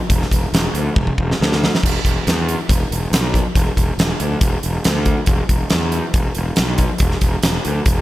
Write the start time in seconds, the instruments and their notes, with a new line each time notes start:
0.09 fingered electric bass E1, kick, closed hi-hat
0.22 snare
0.31 fingered electric bass E1, kick, closed hi-hat
0.53 fingered electric bass E1, snare, closed hi-hat
0.74 fingered electric bass D2, closed hi-hat
0.96 fingered electric bass E1, kick, high tom
1.07 kick
1.18 fingered electric bass E1, kick
1.31 snare
1.40 fingered electric bass D2, snare
1.52 snare
1.64 snare
1.75 snare
1.83 fingered electric bass E1, kick, closed hi-hat, crash
2.04 fingered electric bass E1, kick, closed hi-hat
2.27 fingered electric bass E2, snare, closed hi-hat
2.49 closed hi-hat
2.69 fingered electric bass E1, kick, closed hi-hat
2.91 fingered electric bass E1, closed hi-hat
3.12 fingered electric bass B1, snare, closed hi-hat
3.34 kick, closed hi-hat
3.55 fingered electric bass E1, kick, closed hi-hat
3.77 fingered electric bass E1, kick, closed hi-hat
3.98 fingered electric bass E1, snare, closed hi-hat
4.20 fingered electric bass D2, closed hi-hat
4.41 fingered electric bass E1, kick, closed hi-hat
4.63 fingered electric bass E1, closed hi-hat
4.84 fingered electric bass D2, snare, closed hi-hat
5.05 kick, closed hi-hat
5.26 fingered electric bass E1, kick, closed hi-hat
5.49 fingered electric bass E1, kick, closed hi-hat
5.70 fingered electric bass E2, snare, closed hi-hat
5.92 closed hi-hat
6.14 fingered electric bass E1, kick, closed hi-hat
6.35 fingered electric bass E1, closed hi-hat
6.56 fingered electric bass B1, snare, closed hi-hat
6.78 kick, closed hi-hat
6.98 fingered electric bass E1, kick, closed hi-hat
7.11 snare
7.21 fingered electric bass E1, kick, closed hi-hat
7.43 fingered electric bass E1, snare, closed hi-hat
7.65 fingered electric bass D2, closed hi-hat
7.86 fingered electric bass E1, kick, closed hi-hat